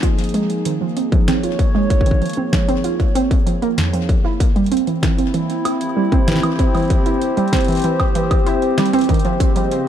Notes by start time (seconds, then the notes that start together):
Already playing: F3 A#3 D#4 G#4
0.03 F4, kick, closed hi-hat
0.19 closed hi-hat
0.24 closed hi-hat
0.29 closed hi-hat
0.34 G#3, closed hi-hat
0.50 closed hi-hat
0.65 D#3, closed hi-hat
0.81 F3
0.97 C4, closed hi-hat
1.11 F3 C#5, kick, closed hi-hat
1.28 C4, snare, closed hi-hat
1.43 F4, closed hi-hat
1.59 kick, closed hi-hat
1.75 G#3
1.90 kick, closed hi-hat
2.01 kick
2.06 D#3, closed hi-hat
2.11 kick
2.22 F3, closed hi-hat
2.26 closed hi-hat
2.29 closed hi-hat
2.33 C4, closed hi-hat
2.53 F3, kick, snare, closed hi-hat
2.68 C4, closed hi-hat
2.84 F4, closed hi-hat
3.00 kick, closed hi-hat
3.15 C4, closed hi-hat
3.31 kick, closed hi-hat
3.46 F3, closed hi-hat
3.62 A#3, closed hi-hat
3.78 F2, snare, closed hi-hat
3.93 F3, closed hi-hat
4.09 kick, closed hi-hat
4.25 E4
4.40 kick, closed hi-hat
4.54 G3 C4, closed hi-hat
4.66 closed hi-hat
4.71 C4, closed hi-hat
4.77 closed hi-hat
4.85 E3 E4, closed hi-hat
5.03 E3, kick, snare, closed hi-hat
5.18 C4, closed hi-hat
5.34 E3, closed hi-hat
5.50 closed hi-hat
5.61 G4 C5
5.65 E4, closed hi-hat, high woodblock
5.81 closed hi-hat
5.97 G3
6.12 C4, kick, closed hi-hat
6.28 E3, snare, closed hi-hat
6.32 snare
6.36 snare
6.39 E3, snare, closed hi-hat, high woodblock
6.59 C4, kick, closed hi-hat
6.75 E3, closed hi-hat, high woodblock
6.77 closed hi-hat
6.80 closed hi-hat
6.82 closed hi-hat
6.85 closed hi-hat
6.88 closed hi-hat
6.90 kick, closed hi-hat
7.06 E4, closed hi-hat
7.21 closed hi-hat
7.37 G3, closed hi-hat
7.48 closed hi-hat
7.53 C4, kick, snare, closed hi-hat
7.57 closed hi-hat
7.61 closed hi-hat
7.64 closed hi-hat
7.68 E3, closed hi-hat
7.71 closed hi-hat
7.72 closed hi-hat
7.75 closed hi-hat
7.77 closed hi-hat
7.79 closed hi-hat
7.82 closed hi-hat
7.84 E3, closed hi-hat
8.00 C4, kick, closed hi-hat, high woodblock
8.15 E3, closed hi-hat
8.31 kick, closed hi-hat, high woodblock
8.46 E4, closed hi-hat
8.62 closed hi-hat
8.78 G3, snare, closed hi-hat
8.86 closed hi-hat
8.93 C4, closed hi-hat
8.99 closed hi-hat
9.01 closed hi-hat
9.04 closed hi-hat
9.09 C#3 D#3, kick, closed hi-hat
9.14 closed hi-hat
9.19 closed hi-hat
9.25 F3, closed hi-hat
9.40 C4 D#5, kick, closed hi-hat
9.49 G3
9.56 F3, closed hi-hat
9.71 closed hi-hat